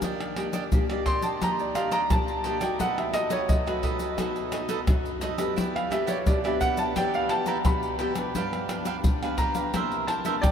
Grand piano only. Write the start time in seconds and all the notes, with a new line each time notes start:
1.06 C6
1.23 A5
1.43 A#5
1.60 D5
1.75 F5
1.92 A#5
2.12 A5
2.62 G5
2.81 F#5
2.98 E5
3.14 D#5
3.32 C#5
3.49 D#5
5.76 F5
5.92 E5
6.09 C#5
6.27 D5
6.46 E5
6.61 F#5
6.79 A5
6.96 G5
7.15 F5
7.30 A5
7.47 A#5
7.66 B5
9.38 A#5
10.07 A5
10.42 D5 G5